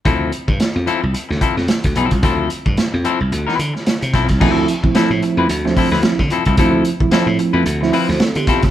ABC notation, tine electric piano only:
X:1
M:4/4
L:1/16
Q:"Swing 16ths" 1/4=110
K:Ddor
V:1 name="Tine electric piano"
z16 | z16 | [F,A,CE]2 z [F,A,CE] [F,A,CE]4 z [F,A,CD]2 z [F,A,CE] C [CE] z | [F,A,CE]2 z [F,A,CE] [F,A,CE]4 z [F,A,CE]2 [Ec] [CA] [B,G]2 [A,F] |]